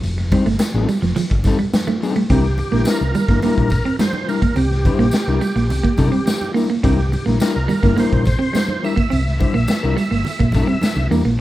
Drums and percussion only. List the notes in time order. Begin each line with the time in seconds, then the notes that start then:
0.03 closed hi-hat, tambourine
0.18 snare, closed hi-hat
0.31 kick, closed hi-hat, tambourine, muted conga
0.46 snare, closed hi-hat
0.59 snare, tambourine, high conga
0.88 closed hi-hat, tambourine
1.02 snare, closed hi-hat
1.16 closed hi-hat, tambourine, muted conga, low conga
1.30 kick, closed hi-hat
1.44 kick, snare, closed hi-hat, tambourine, muted conga
1.59 closed hi-hat
1.73 snare, tambourine, high conga
1.88 closed hi-hat, high conga
2.02 open hi-hat, tambourine
2.16 closed hi-hat, high conga
2.30 kick, closed hi-hat
2.44 snare, closed hi-hat
2.58 closed hi-hat, tambourine, muted conga
2.73 snare, closed hi-hat
2.85 snare, tambourine, high conga
3.01 closed hi-hat
3.15 closed hi-hat, tambourine, low conga
3.28 kick, snare, closed hi-hat
3.42 closed hi-hat, tambourine, muted conga
3.58 kick, closed hi-hat
3.70 kick, snare, closed hi-hat, tambourine, muted conga
3.86 closed hi-hat
3.99 snare, tambourine, high conga
4.13 closed hi-hat, high conga
4.29 open hi-hat, tambourine
4.42 kick, closed hi-hat
4.56 closed hi-hat, tambourine, muted conga
4.72 snare, closed hi-hat
4.85 kick, closed hi-hat, tambourine, muted conga
5.00 snare, closed hi-hat
5.11 snare, tambourine, high conga
5.28 closed hi-hat
5.41 closed hi-hat, tambourine
5.56 snare, closed hi-hat
5.70 closed hi-hat, tambourine, muted conga, low conga
5.84 kick
5.97 kick, closed hi-hat, tambourine, muted conga
6.13 closed hi-hat
6.27 snare, tambourine, high conga
6.41 closed hi-hat, high conga
6.55 open hi-hat, tambourine
6.70 closed hi-hat
6.84 kick, closed hi-hat, tambourine
6.98 snare, closed hi-hat
7.12 closed hi-hat, tambourine, muted conga
7.27 snare, closed hi-hat
7.40 snare, tambourine, high conga
7.56 closed hi-hat
7.69 closed hi-hat, tambourine, low conga
7.83 kick, snare, closed hi-hat
7.98 closed hi-hat, tambourine, muted conga
8.13 kick
8.25 kick, snare, closed hi-hat, tambourine, muted conga
8.42 closed hi-hat
8.55 snare, tambourine, high conga
8.69 closed hi-hat, high conga
8.84 open hi-hat, tambourine
8.97 kick, closed hi-hat
9.11 closed hi-hat, tambourine, muted conga
9.27 snare, closed hi-hat
9.40 kick, closed hi-hat, muted conga
9.55 snare, closed hi-hat
9.68 snare, tambourine, high conga
9.83 closed hi-hat
9.98 closed hi-hat, tambourine
10.12 snare, closed hi-hat
10.25 closed hi-hat, tambourine, muted conga, low conga
10.40 kick
10.52 kick, snare, closed hi-hat, tambourine, muted conga
10.69 closed hi-hat
10.81 snare, tambourine, high conga
10.96 closed hi-hat, high conga
11.11 open hi-hat, tambourine
11.25 closed hi-hat